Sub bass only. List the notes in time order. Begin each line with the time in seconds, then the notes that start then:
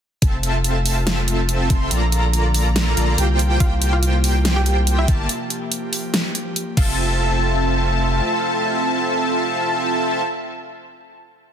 0.22 F1
1.70 F1
1.91 A#1
2.97 A#1
3.18 C2
3.60 C2
5.08 G1
6.77 F1